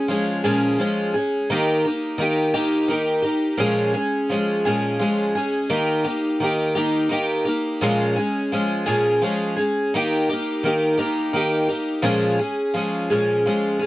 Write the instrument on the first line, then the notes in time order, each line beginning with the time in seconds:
twelve-string acoustic guitar
0.08 F3 G#3 C#4 G#4
0.44 A#2 F3 G#3 C#4 G#4
0.79 F3 G#3 C#4 G#4
1.14 G#3 C#4 G#4
1.50 D#3 A#3 D#4 G4
1.85 A#3 D#4 G4
2.18 D#3 A#3 D#4 G4
2.54 D#3 A#3 D#4 G4
2.88 D#3 A#3 D#4 G4
3.22 A#3 D#4 G4
3.58 A#2 F3 G#3 C#4 G#4
3.94 G#3 C#4 G#4
4.29 F3 G#3 C#4 G#4
4.65 A#2 F3 G#3 C#4 G#4
4.99 F3 G#3 C#4 G#4
5.35 G#3 C#4 G#4
5.70 D#3 A#3 D#4 G4
6.04 A#3 D#4 G4
6.40 D#3 A#3 D#4 G4
6.75 D#3 A#3 D#4 G4
7.09 D#3 A#3 D#4 G4
7.45 A#3 D#4 G4
7.81 A#2 F3 G#3 C#4 G#4
8.16 G#3 C#4 G#4
8.52 F3 G#3 C#4 G#4
8.86 A#2 F3 G#3 C#4 G#4
9.21 F3 G#3 C#4 G#4
9.56 G#3 C#4 G#4
9.94 D#3 A#3 D#4 G4
10.29 A#3 D#4 G4
10.63 D#3 A#3 D#4 G4
10.98 D#3 A#3 D#4 G4
11.33 D#3 A#3 D#4 G4
11.68 A#3 D#4 G4
12.02 A#2 F3 G#3 C#4 G#4
12.39 G#3 C#4 G#4
12.74 F3 G#3 C#4 G#4
13.10 A#2 F3 G#3 C#4 G#4
13.46 F3 G#3 C#4 G#4
13.79 G#3 C#4 G#4